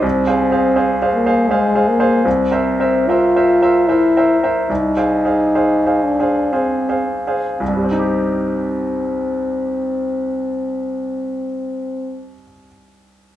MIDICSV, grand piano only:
0, 0, Header, 1, 2, 480
1, 0, Start_track
1, 0, Key_signature, -3, "minor"
1, 0, Tempo, 738007
1, 23, Time_signature, 3, 2, 24, 8
1, 1464, Tempo, 814111
1, 2904, Tempo, 859599
1, 3384, Tempo, 972447
1, 3864, Tempo, 1075269
1, 4344, Tempo, 967742
1, 7201, End_track
2, 0, Start_track
2, 0, Title_t, "Grand piano"
2, 0, Program_c, 0, 0
2, 0, Control_c, 0, 64, 127
2, 15, Note_on_c, 0, 36, 40
2, 37, Control_c, 0, 64, 0
2, 146, Control_c, 0, 64, 127
2, 174, Note_off_c, 0, 36, 0
2, 175, Note_on_c, 0, 68, 29
2, 178, Note_on_c, 0, 72, 31
2, 178, Note_on_c, 0, 77, 31
2, 321, Note_off_c, 0, 68, 0
2, 322, Note_off_c, 0, 77, 0
2, 323, Note_off_c, 0, 72, 0
2, 336, Note_on_c, 0, 68, 28
2, 337, Note_on_c, 0, 72, 29
2, 338, Note_on_c, 0, 77, 31
2, 480, Note_off_c, 0, 68, 0
2, 481, Note_off_c, 0, 72, 0
2, 481, Note_off_c, 0, 77, 0
2, 493, Note_on_c, 0, 68, 34
2, 496, Note_on_c, 0, 72, 31
2, 498, Note_on_c, 0, 77, 33
2, 639, Note_off_c, 0, 68, 0
2, 640, Note_off_c, 0, 72, 0
2, 641, Note_off_c, 0, 77, 0
2, 663, Note_on_c, 0, 68, 29
2, 665, Note_on_c, 0, 77, 32
2, 666, Note_on_c, 0, 72, 30
2, 805, Note_off_c, 0, 68, 0
2, 806, Note_off_c, 0, 77, 0
2, 807, Note_off_c, 0, 72, 0
2, 819, Note_on_c, 0, 68, 32
2, 822, Note_on_c, 0, 72, 31
2, 824, Note_on_c, 0, 77, 36
2, 963, Note_off_c, 0, 68, 0
2, 965, Note_off_c, 0, 72, 0
2, 966, Note_off_c, 0, 77, 0
2, 977, Note_on_c, 0, 68, 30
2, 982, Note_on_c, 0, 72, 34
2, 983, Note_on_c, 0, 77, 38
2, 1122, Note_off_c, 0, 68, 0
2, 1124, Note_off_c, 0, 72, 0
2, 1125, Note_off_c, 0, 77, 0
2, 1139, Note_on_c, 0, 68, 32
2, 1140, Note_on_c, 0, 72, 29
2, 1144, Note_on_c, 0, 77, 32
2, 1283, Note_off_c, 0, 68, 0
2, 1284, Note_off_c, 0, 72, 0
2, 1286, Note_off_c, 0, 77, 0
2, 1300, Note_on_c, 0, 72, 37
2, 1301, Note_on_c, 0, 68, 34
2, 1304, Note_on_c, 0, 77, 36
2, 1448, Note_off_c, 0, 68, 0
2, 1448, Note_off_c, 0, 72, 0
2, 1450, Note_off_c, 0, 77, 0
2, 1464, Note_on_c, 0, 36, 40
2, 1476, Control_c, 0, 64, 0
2, 1568, Control_c, 0, 64, 127
2, 1617, Note_off_c, 0, 36, 0
2, 1619, Note_on_c, 0, 70, 31
2, 1623, Note_on_c, 0, 72, 30
2, 1625, Note_on_c, 0, 76, 28
2, 1772, Note_off_c, 0, 70, 0
2, 1774, Note_off_c, 0, 72, 0
2, 1775, Note_off_c, 0, 76, 0
2, 1787, Note_on_c, 0, 70, 29
2, 1788, Note_on_c, 0, 72, 28
2, 1792, Note_on_c, 0, 76, 30
2, 1937, Note_off_c, 0, 70, 0
2, 1938, Note_off_c, 0, 72, 0
2, 1940, Note_off_c, 0, 76, 0
2, 1957, Note_on_c, 0, 70, 31
2, 1962, Note_on_c, 0, 72, 30
2, 1965, Note_on_c, 0, 76, 29
2, 2101, Note_off_c, 0, 70, 0
2, 2103, Note_off_c, 0, 72, 0
2, 2105, Note_off_c, 0, 76, 0
2, 2119, Note_on_c, 0, 70, 26
2, 2120, Note_on_c, 0, 72, 28
2, 2122, Note_on_c, 0, 76, 30
2, 2257, Note_off_c, 0, 70, 0
2, 2258, Note_off_c, 0, 72, 0
2, 2259, Note_off_c, 0, 76, 0
2, 2272, Note_on_c, 0, 70, 29
2, 2274, Note_on_c, 0, 72, 28
2, 2275, Note_on_c, 0, 76, 33
2, 2412, Note_off_c, 0, 70, 0
2, 2413, Note_off_c, 0, 72, 0
2, 2414, Note_off_c, 0, 76, 0
2, 2429, Note_on_c, 0, 72, 29
2, 2432, Note_on_c, 0, 70, 27
2, 2433, Note_on_c, 0, 76, 32
2, 2570, Note_off_c, 0, 72, 0
2, 2572, Note_off_c, 0, 70, 0
2, 2572, Note_off_c, 0, 76, 0
2, 2593, Note_on_c, 0, 70, 29
2, 2597, Note_on_c, 0, 72, 28
2, 2597, Note_on_c, 0, 76, 29
2, 2732, Note_off_c, 0, 70, 0
2, 2734, Note_off_c, 0, 76, 0
2, 2735, Note_off_c, 0, 72, 0
2, 2749, Note_on_c, 0, 70, 28
2, 2752, Note_on_c, 0, 72, 29
2, 2755, Note_on_c, 0, 76, 32
2, 2890, Note_off_c, 0, 70, 0
2, 2892, Note_off_c, 0, 72, 0
2, 2893, Note_off_c, 0, 76, 0
2, 2905, Note_on_c, 0, 36, 34
2, 2914, Control_c, 0, 64, 0
2, 3036, Control_c, 0, 64, 127
2, 3054, Note_off_c, 0, 36, 0
2, 3058, Note_on_c, 0, 72, 25
2, 3059, Note_on_c, 0, 68, 25
2, 3060, Note_on_c, 0, 77, 28
2, 3201, Note_off_c, 0, 68, 0
2, 3201, Note_off_c, 0, 72, 0
2, 3202, Note_off_c, 0, 77, 0
2, 3214, Note_on_c, 0, 72, 24
2, 3215, Note_on_c, 0, 68, 23
2, 3221, Note_on_c, 0, 77, 27
2, 3366, Note_off_c, 0, 68, 0
2, 3366, Note_off_c, 0, 72, 0
2, 3369, Note_off_c, 0, 77, 0
2, 3383, Note_on_c, 0, 68, 24
2, 3384, Note_on_c, 0, 72, 27
2, 3385, Note_on_c, 0, 77, 27
2, 3522, Note_off_c, 0, 68, 0
2, 3523, Note_off_c, 0, 72, 0
2, 3523, Note_off_c, 0, 77, 0
2, 3536, Note_on_c, 0, 68, 23
2, 3538, Note_on_c, 0, 72, 23
2, 3542, Note_on_c, 0, 77, 25
2, 3681, Note_off_c, 0, 68, 0
2, 3682, Note_off_c, 0, 72, 0
2, 3684, Note_off_c, 0, 77, 0
2, 3701, Note_on_c, 0, 68, 24
2, 3705, Note_on_c, 0, 72, 22
2, 3707, Note_on_c, 0, 77, 28
2, 3849, Note_off_c, 0, 68, 0
2, 3851, Note_off_c, 0, 72, 0
2, 3852, Note_off_c, 0, 77, 0
2, 3864, Note_on_c, 0, 68, 25
2, 3866, Note_on_c, 0, 77, 25
2, 3867, Note_on_c, 0, 72, 23
2, 4007, Note_off_c, 0, 68, 0
2, 4008, Note_off_c, 0, 77, 0
2, 4009, Note_off_c, 0, 72, 0
2, 4026, Note_on_c, 0, 68, 21
2, 4028, Note_on_c, 0, 72, 22
2, 4030, Note_on_c, 0, 77, 25
2, 4176, Note_off_c, 0, 68, 0
2, 4177, Note_off_c, 0, 72, 0
2, 4178, Note_off_c, 0, 77, 0
2, 4197, Note_on_c, 0, 68, 25
2, 4199, Note_on_c, 0, 77, 25
2, 4200, Note_on_c, 0, 72, 23
2, 4332, Note_off_c, 0, 68, 0
2, 4333, Note_off_c, 0, 77, 0
2, 4334, Note_off_c, 0, 72, 0
2, 4345, Note_on_c, 0, 36, 30
2, 4357, Control_c, 0, 64, 0
2, 4386, Note_on_c, 0, 43, 26
2, 4423, Note_on_c, 0, 55, 23
2, 4462, Note_on_c, 0, 60, 23
2, 4477, Control_c, 0, 64, 127
2, 4500, Note_on_c, 0, 63, 25
2, 4538, Note_on_c, 0, 67, 25
2, 6659, Note_off_c, 0, 36, 0
2, 6700, Note_off_c, 0, 43, 0
2, 6737, Note_off_c, 0, 55, 0
2, 6776, Note_off_c, 0, 60, 0
2, 6814, Note_off_c, 0, 63, 0
2, 6852, Note_off_c, 0, 67, 0
2, 7201, End_track
0, 0, End_of_file